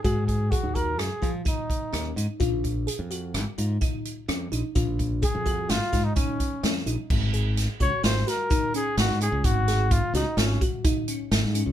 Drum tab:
CC |----------|----------|----------|x---------|
HH |xxxxxxxxxx|xxxxxxxxxx|xxxxxxxxxx|-xxxxxxxxx|
SD |----r---r-|----r---r-|----oo--o-|--o-oo--o-|
BD |oooo-ooo--|oo----o---|oooo-ooo--|o--o--o---|

CC |----------|
HH |xxxxxxxxxx|
SD |-o-oo---o-|
BD |o-o--oo---|